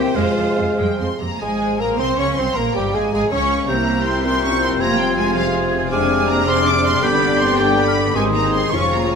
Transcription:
Already playing: harp G3 A#3 G4 C5, bassoon A#3, french horn section C4, cello section G4, clarinet C5, violin section C5 G5, flute G5, cor anglais G5
0.00 harp F3 G#3
0.07 harp F4
0.12 viola section G#3, harp C5, flute F5
0.16 double bass section F2, bassoon G#3, french horn section G#3, cello section F4, clarinet C5, cor anglais F5, violin section F5
0.37 double bass section F2, viola section F3
0.57 double bass section F2, viola section C3
0.77 double bass section F2, cello section G3, viola section G#3, violin section G5
0.98 double bass section F2, viola section F3, cello section C4, violin section C6
1.20 double bass section F2, viola section C3, cello section A#3, violin section A#5
1.40 double bass section G#1, harp F3, viola section G#3, cello section G#3, bassoon G#3, clarinet G#4, violin section G#4 G#5, cor anglais G#4, flute G#5
1.44 french horn section G#3
1.51 harp G#3
1.62 harp C5
1.71 harp G#4
1.79 double bass section A#1, viola section A#3, bassoon A#3, cello section A#3, french horn section A#3, violin section A#4 A#5, clarinet A#4, cor anglais A#4, harp F5, flute A#5
1.91 harp C6
1.99 double bass section C2, french horn section C4, viola section C4, bassoon C4, cello section C4, clarinet C5, violin section C5 C6, cor anglais C5, harp G#5, flute C6
2.16 double bass section C#2, bassoon C#4, cello section C#4, french horn section C#4, viola section C#4, harp G#4, violin section C#5 C#6, clarinet C#5, cor anglais C#5, flute C#6
2.28 harp C5
2.36 double bass section C2, viola section C4, cello section C4, french horn section C4, bassoon C4, harp F4, violin section C5 C6, clarinet C5, cor anglais C5, flute C6
2.47 harp G#3
2.54 double bass section A#1, harp F3, cello section A#3, viola section A#3, bassoon A#3, clarinet A#4, cor anglais A#4, violin section A#4 A#5, flute A#5
2.59 french horn section A#3
2.66 harp G#3
2.75 double bass section G1, cello section G3, viola section G3, bassoon G3, french horn section G3, clarinet G4, violin section G4 G5, cor anglais G4, harp A#4, flute G5
2.85 harp G#4
2.93 double bass section G#1, french horn section G#3, cello section G#3, bassoon G#3, viola section G#3, clarinet G#4, violin section G#4 G#5, cor anglais G#4, harp F5, flute G#5
3.04 harp A#5
3.12 double bass section G#1, cello section G#3, bassoon G#3, french horn section G#3, viola section G#3, clarinet G#4, violin section G#4 G#5, cor anglais G#4, flute G#5, harp G#5
3.22 harp F5
3.31 double bass section C#2, viola section C#4, bassoon C#4, cello section C#4, french horn section C#4, clarinet C#5, violin section C#5 C#6, cor anglais C#5, flute C#6
3.41 harp A#4
3.50 harp F4
3.60 harp G#3
3.68 double bass section C2, bassoon C3, harp C3, cello section A#3, viola section C4 E4, french horn section C4 E4, clarinet G4, violin section G4 C5 A#5, cor anglais A#4, flute G6
3.78 harp C4
3.88 harp E4
3.98 harp C5
4.06 cello section C4, harp G4, violin section C6
4.16 harp E5
4.24 bassoon A#2, cello section C4, clarinet G4, harp C6, violin section C6, flute G6
4.34 harp G4
4.43 cello section C#4, harp C5, violin section C#6
4.53 harp E4
4.62 harp G3, cello section C4, violin section C6
4.71 harp C4
4.80 double bass section F1, harp F2, bassoon C3, cello section A#3, french horn section F4, clarinet F4, viola section F4, violin section G#4 A#5, cor anglais C5, flute G#6
4.90 harp C3
4.99 cello section G3, harp F4, violin section G5
5.08 harp C5
5.18 cello section G#3, harp G#4, violin section G#5
5.27 harp F5
5.35 bassoon C3, cello section F3, clarinet G#4, cor anglais C5, violin section F5, harp C6, flute G#6
5.46 harp G#4
5.54 harp C5
5.63 harp F4
5.73 harp G#3
5.82 harp C3
5.90 harp F2, bassoon C3, cello section G#3, viola section C4 D4, french horn section C4 D4, clarinet G#4, violin section D5 G#5, cor anglais D5, flute F6
6.01 harp C3
6.10 harp G#4
6.19 harp D5
6.28 cello section A#3, harp C5, violin section A#5
6.38 harp G#5
6.46 bassoon C3, french horn section C4 D4, cello section C4, clarinet G#4, cor anglais D5, violin section C6, harp D6, flute F6
6.56 harp C5
6.65 cello section D4, violin section D6
6.74 harp G#4
6.84 harp C4, cello section C4, violin section C6
6.94 harp C3
7.01 double bass section G1, harp G2, bassoon D3, cello section B3, viola section B3, french horn section B3 D4, violin section G4 B5, clarinet G4, cor anglais D5, flute G6
7.12 harp D3
7.21 harp G4
7.30 harp D5
7.39 cello section C4, harp B4, violin section C6
7.49 harp G5
7.58 bassoon D3, cello section G3, french horn section B3 D4, clarinet G4, cor anglais D5, violin section G5, harp D6, flute G6
7.68 harp B4
7.77 cello section B3, harp D5, violin section B5
7.87 flute F6
7.97 harp B3
8.06 harp D3
8.14 double bass section G#1, harp G#2, bassoon D#3, cello section G#3, french horn section C4 D#4, viola section C4 D#4, violin section G#4 C5 G#5, clarinet G#4, cor anglais C5, flute D#6
8.24 harp D#3
8.33 cello section A#3, harp D#4, violin section A#5
8.43 harp C5
8.53 cello section C4, harp D#4, violin section C6
8.62 harp D#5
8.70 double bass section F1, harp F2, bassoon F3, viola section G#3 F4, cello section C#4, french horn section F4, clarinet G#4, violin section C#5 C#6, cor anglais C#5, flute C#6
8.74 french horn section C#4
8.82 harp F3
8.92 cello section A#3, harp C#4, violin section A#5
9.01 harp C#5
9.12 cello section G#3, harp G#4

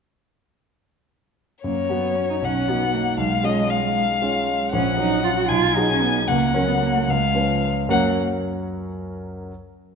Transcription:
1.64 grand piano F#2, cello A#3, violin C#5
1.90 grand piano F#3 C#4 F#4, cello B3
2.15 cello C#4
2.30 cello D#4
2.42 grand piano B1, cello C#4, violin F#5
2.68 grand piano F#3 D#4 F#4, cello B3
2.94 cello A#3
3.18 grand piano B1, cello G#3, violin F5
3.43 grand piano G#3 C#4 F4, violin D#5
3.71 violin F5
4.22 grand piano G#3 C#4 F4
4.73 grand piano A#1, cello C#4, violin F#5
4.98 grand piano F#3 C#4 F#4, cello D#4
5.24 cello F4
5.37 cello F#4
5.48 grand piano B1, cello F4, violin G#5
5.75 grand piano F#3 D#4 G#4, cello D#4
5.89 cello C#4
6.01 cello B3
6.28 grand piano C#2, cello A#3, violin F#5
6.54 grand piano F#3 C#4 A#4, cello C#4
6.68 cello B3
6.79 cello A#3
7.07 grand piano C#2, cello G#3, violin F5
7.35 grand piano F3 C#4 B4
7.89 grand piano F#2 F#3 C#4 A#4 C#5, cello A#3, violin F#5

